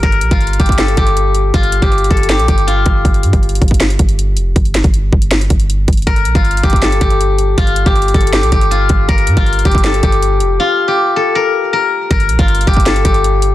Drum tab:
HH |x-----x-----x-----x-----x---x---x---x---x---x---x-----x-----x-----x-----x-----------x-----------|x-----x-----x-----x-----x---x---x---x---x---x---x-----x-----x-----x-----x-----------x-----------|x-----x-----x-----x-----x---x---x---x---x---x---x-----x-----x-----x-----x-----------x-----------|x-----x-----x-----x-----x-----------------x-----x-----x-----x-----x-----x-----------x--x--x--x--|
CP |------------------------------------------------x-----------------------------------------------|------------------------------------------------x-----------------------------------------------|------------------------------------------------x-----------------------------------------------|------------x-----------------------------------x-----------------------------------------------|
SD |------------------------------------------------o-----------------------------------------------|------------------------------------------------o-----------------------------------------------|------------------------------------------------o-----------------------------------------------|------------o-----------------------------------o-----------------------------------------------|
BD |o-----------------o-----------------o-----o-----------------o-----------------------------------|o-----------------o-----------------o-----------------------o-----------------------o-----------|o-----------------o-----------------o-----o-----------------o-----------------------------------|o-----------------o-----------------o-----------------------o-----------------------o-----------|

HH |x-----x-----x-----x-----x---x---x---x---x---x---x-----x-----x-----x-----x-----------x-----------|x-----x-----x-----x-----x---x---x---x---x---x---x-----x-----x-----x-----x-----------x-----------|x-----x-----x-----x-----x---x---x---x---x---x---x-----x-----x-----x-----x-----------x-----------|------------------------------------------------------------------------------------------------|
CP |------------------------------------------------x-----------------------------------------------|------------------------------------------------x-----------------------------------------------|------------------------------------------------x-----------------------------------------------|------------------------------------------------------------------------------------------------|
SD |------------------------------------------------o-----------------------------------------------|------------------------------------------------o-----------------------------------------------|------------------------------------------------o-----------------------------------------------|------------------------------------------------------------------------------------------------|
BD |o-----------------o-----------------o-----o-----------------o-----------------------------------|o-----------------o-----------------o-----------------------o-----------------------o-----------|o-----------------o-----------------o-----o-----------------o-----------------------------------|------------------------------------------------------------------------------------------------|

HH |x-----x-----x-----x-----x---x---x---x---x---x---x-----x-----x-----x-----x-----------x-----------|
CP |------------------------------------------------x-----------------------------------------------|
SD |------------------------------------------------o-----------------------------------------------|
BD |o-----------------o-----------------o-----o-----------------o-----------------------------------|